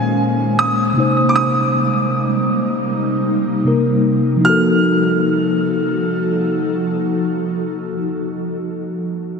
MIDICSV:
0, 0, Header, 1, 4, 480
1, 0, Start_track
1, 0, Tempo, 769231
1, 844, Time_signature, 4, 2, 24, 8
1, 5865, End_track
2, 0, Start_track
2, 0, Title_t, "Grand piano"
2, 0, Program_c, 0, 0
2, 0, Note_on_c, 0, 80, 100
2, 367, Note_on_c, 0, 87, 102
2, 387, Note_off_c, 0, 80, 0
2, 780, Note_off_c, 0, 87, 0
2, 806, Note_on_c, 0, 86, 71
2, 845, Note_off_c, 0, 86, 0
2, 846, Note_on_c, 0, 87, 93
2, 2260, Note_off_c, 0, 87, 0
2, 2775, Note_on_c, 0, 89, 79
2, 4976, Note_off_c, 0, 89, 0
2, 5865, End_track
3, 0, Start_track
3, 0, Title_t, "Tine electric piano"
3, 0, Program_c, 1, 4
3, 0, Control_c, 1, 64, 127
3, 0, Note_on_c, 1, 46, 63
3, 0, Note_on_c, 1, 56, 56
3, 0, Note_on_c, 1, 61, 58
3, 0, Note_on_c, 1, 72, 66
3, 568, Note_off_c, 1, 46, 0
3, 575, Note_off_c, 1, 56, 0
3, 582, Note_off_c, 1, 61, 0
3, 583, Note_on_c, 1, 48, 62
3, 588, Note_off_c, 1, 72, 0
3, 596, Note_on_c, 1, 58, 55
3, 610, Note_on_c, 1, 63, 56
3, 612, Control_c, 1, 64, 0
3, 624, Note_on_c, 1, 72, 68
3, 726, Control_c, 1, 64, 127
3, 2248, Note_off_c, 1, 48, 0
3, 2255, Note_off_c, 1, 58, 0
3, 2262, Note_off_c, 1, 63, 0
3, 2268, Note_off_c, 1, 72, 0
3, 2274, Note_on_c, 1, 48, 54
3, 2280, Note_on_c, 1, 58, 51
3, 2287, Note_on_c, 1, 63, 51
3, 2294, Note_on_c, 1, 70, 62
3, 2723, Note_on_c, 1, 53, 71
3, 2743, Note_off_c, 1, 63, 0
3, 2750, Note_on_c, 1, 63, 65
3, 2759, Note_off_c, 1, 48, 0
3, 2762, Note_off_c, 1, 58, 0
3, 2768, Note_off_c, 1, 70, 0
3, 2772, Control_c, 1, 64, 0
3, 2777, Note_on_c, 1, 66, 69
3, 2805, Note_on_c, 1, 69, 77
3, 2876, Control_c, 1, 64, 127
3, 4923, Note_off_c, 1, 53, 0
3, 4951, Note_off_c, 1, 63, 0
3, 4978, Note_off_c, 1, 66, 0
3, 5005, Note_off_c, 1, 69, 0
3, 5865, End_track
4, 0, Start_track
4, 0, Title_t, "Ambient pad"
4, 0, Program_c, 2, 92
4, 0, Note_on_c, 2, 56, 71
4, 0, Note_on_c, 2, 58, 65
4, 0, Note_on_c, 2, 61, 80
4, 586, Note_off_c, 2, 56, 0
4, 586, Note_off_c, 2, 58, 0
4, 587, Note_off_c, 2, 61, 0
4, 602, Note_on_c, 2, 55, 66
4, 602, Note_on_c, 2, 58, 68
4, 602, Note_on_c, 2, 63, 79
4, 603, Note_on_c, 2, 48, 70
4, 2741, Note_off_c, 2, 48, 0
4, 2741, Note_off_c, 2, 55, 0
4, 2741, Note_off_c, 2, 58, 0
4, 2741, Note_off_c, 2, 63, 0
4, 2762, Note_on_c, 2, 63, 66
4, 2763, Note_on_c, 2, 53, 68
4, 2763, Note_on_c, 2, 66, 67
4, 2763, Note_on_c, 2, 69, 78
4, 4962, Note_off_c, 2, 63, 0
4, 4963, Note_off_c, 2, 66, 0
4, 4963, Note_off_c, 2, 69, 0
4, 4964, Note_off_c, 2, 53, 0
4, 5865, End_track
0, 0, End_of_file